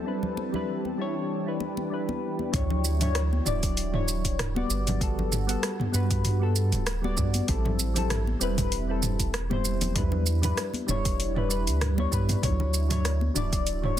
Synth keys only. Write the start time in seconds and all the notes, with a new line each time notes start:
0.04 G3 D4 E4 B4
0.53 G3 D4 E4 B4
0.98 G3 D4 E4 C#5
1.45 G3 D4 E4 B4
1.90 G3 D4 E4 B4
2.52 F#3 D4 E4 C#5
2.99 F#3 D4 E4 C#5
3.45 F#3 D4 E4 D5
3.92 F#3 D4 E4 C#5
4.55 G3 B3 F#4 D5
5.00 G3 B3 F#4 A4
5.47 G3 B3 F#4 A4
5.92 G3 B3 F#4 B4
6.39 G3 B3 F#4 A4
7.02 G3 B3 F#4 D5
7.47 G3 C4 E4 A4
7.94 G3 C4 E4 A4
8.40 G3 C4 E4 B4
8.88 G3 C4 E4 A4
9.50 G3 C4 E4 C5
9.94 G3 D4 E4 B4
10.42 G3 D4 E4 B4
10.87 G3 D4 E4 C#5
11.34 G3 D4 E4 B4
11.49 G3 D4 E4 B4
11.96 G3 D4 E4 C#5
12.10 G3 D4 E4 B4
12.42 F#3 D4 E4 C#5
12.89 F#3 D4 E4 C#5
13.34 F#3 D4 E4 D5
13.82 F#3 D4 E4 C#5